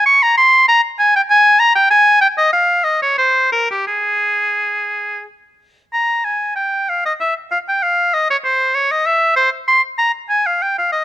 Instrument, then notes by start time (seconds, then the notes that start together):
oboe
0.06 C#6
0.22 A#5
0.37 C6
0.68 A#5
0.99 G#5
1.16 G5
1.30 G#5
1.59 A#5
1.75 G5
1.90 G#5
2.21 G5
2.38 D#5
2.53 F5
2.84 D#5
3.02 C#5
3.18 C5
3.52 A#4
3.71 G4
3.87 G#4
5.93 A#5
6.24 G#5
6.56 G5
6.89 F5
7.05 D#5
7.20 E5
7.51 F5
7.68 G5
7.83 F5
8.14 D#5
8.30 C#5
8.44 C5
8.75 C#5
8.91 D#5
9.06 E5
9.36 C5
9.67 C6
9.98 A#5
10.29 G#5
10.46 F5
10.62 G5
10.78 F5
10.92 D#5